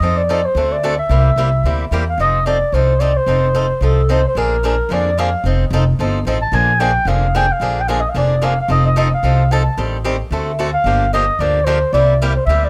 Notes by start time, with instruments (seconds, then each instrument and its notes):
Already playing: clarinet D#5
0.00 upright bass F2, steel-string acoustic guitar F3 C4 D#4 A4
0.17 clarinet D5
0.29 steel-string acoustic guitar F3 C4 D#4 A4
0.45 clarinet C5
0.55 upright bass D2, steel-string acoustic guitar D3 A3 C4 F#4 A4
0.72 clarinet D5
0.83 steel-string acoustic guitar D3 A3 C4 F#4 A4
0.99 clarinet E5
1.09 upright bass C2, steel-string acoustic guitar C3 G3 A#3 E4 G4
1.36 upright bass C2, steel-string acoustic guitar C3 G3 A#3 E4 G4
1.64 upright bass D2, steel-string acoustic guitar C3 G3 A#3 E4 G4
1.91 upright bass E2, steel-string acoustic guitar C3 G3 A#3 E4 G4
2.09 clarinet F5
2.18 upright bass F1, steel-string acoustic guitar F3 C4 D#4 A4, clarinet D#5
2.46 steel-string acoustic guitar F3 C4 D#4 A4, clarinet D5
2.72 upright bass C2, steel-string acoustic guitar F3 C4 D#4 A4, clarinet C5
3.00 steel-string acoustic guitar F3 C4 D#4 A4, clarinet D5
3.17 clarinet C5
3.26 upright bass F1, steel-string acoustic guitar F3 C4 D#4 A4
3.55 steel-string acoustic guitar F3 C4 D#4 A4
3.81 upright bass C2, steel-string acoustic guitar F3 C4 D#4 A4, clarinet A4
4.09 steel-string acoustic guitar F3 C4 D#4 A4, clarinet C5
4.28 clarinet C5
4.35 upright bass A#1, steel-string acoustic guitar D3 F3 A#3 D4 G#4, clarinet A#4
4.63 steel-string acoustic guitar D3 F3 A#3 D4 G#4, clarinet A#4
4.89 upright bass F2, steel-string acoustic guitar D3 F3 A#3 D4 G#4
4.93 clarinet D5
5.17 steel-string acoustic guitar D3 F3 A#3 D4 G#4, clarinet F5
5.44 upright bass F1, steel-string acoustic guitar F3 C4 D#4 A4
5.70 upright bass F1, steel-string acoustic guitar F3 C4 D#4 A4
5.99 upright bass G1, steel-string acoustic guitar F3 C4 D#4 A4
6.25 upright bass A1, steel-string acoustic guitar F3 C4 D#4 A4
6.42 clarinet A5
6.52 upright bass A#1, steel-string acoustic guitar D3 F3 A#3 D4 G#4, clarinet G#5
6.80 steel-string acoustic guitar D3 F3 A#3 D4 G#4, clarinet G5
7.05 upright bass F1, steel-string acoustic guitar D3 F3 A#3 D4 G#4, clarinet F5
7.35 steel-string acoustic guitar D3 F3 A#3 D4 G#4, clarinet G5
7.52 clarinet F5
7.60 upright bass A#1, steel-string acoustic guitar D3 F3 A#3 D4 G#4
7.81 clarinet G5
7.88 steel-string acoustic guitar D3 F3 A#3 D4 G#4, clarinet F5
8.00 clarinet D#5
8.09 clarinet F5
8.14 upright bass F1, steel-string acoustic guitar D3 F3 A#3 D4 G#4, clarinet D5
8.42 steel-string acoustic guitar D3 F3 A#3 D4 G#4, clarinet F5
8.61 clarinet F5
8.68 upright bass F1, steel-string acoustic guitar F3 C4 D#4 A4, clarinet D#5
8.86 clarinet D#5
8.96 steel-string acoustic guitar F3 C4 D#4 A4, clarinet D#5
9.14 clarinet F5
9.23 upright bass C2, steel-string acoustic guitar F3 C4 D#4 A4
9.51 steel-string acoustic guitar F3 C4 D#4 A4, clarinet A5
9.77 upright bass A1, steel-string acoustic guitar D#3 G3 C4 G4 A4
10.04 steel-string acoustic guitar D#3 G3 C4 G4 A4
10.31 upright bass D2, steel-string acoustic guitar D3 A3 C4 F#4 A4
10.59 steel-string acoustic guitar D3 A3 C4 F#4 A4
10.74 clarinet F5
10.84 upright bass G1, steel-string acoustic guitar D3 F3 A#3 D4 G4
11.13 steel-string acoustic guitar D3 F3 A#3 D4 G4, clarinet D#5
11.39 upright bass D2, steel-string acoustic guitar D3 F3 A#3 D4 G4, clarinet D5
11.65 steel-string acoustic guitar D3 F3 A#3 D4 G4, clarinet C5
11.93 upright bass C2, steel-string acoustic guitar C3 G3 A#3 E4 G4, clarinet D5
12.22 steel-string acoustic guitar C3 G3 A#3 E4 G4
12.36 clarinet C5
12.46 upright bass D2, steel-string acoustic guitar C3 G3 A#3, clarinet E5
12.50 steel-string acoustic guitar E4 G4
12.64 clarinet D5